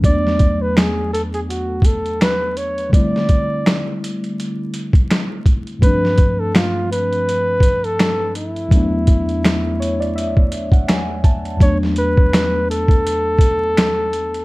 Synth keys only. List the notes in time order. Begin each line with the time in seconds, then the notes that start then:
0.01 E2 F#3 A3
0.06 B3 D4
2.89 D3 G3 A3
2.95 C4 E4
5.79 G2 F3 A3
5.84 C4 D4
8.68 E2 F#3 A3
8.74 B3 D4
9.80 C#5
10.00 D5
10.16 E5
10.72 F#5
10.88 G#5
11.24 A5
11.57 E2 F#3 A3
11.62 B3 D4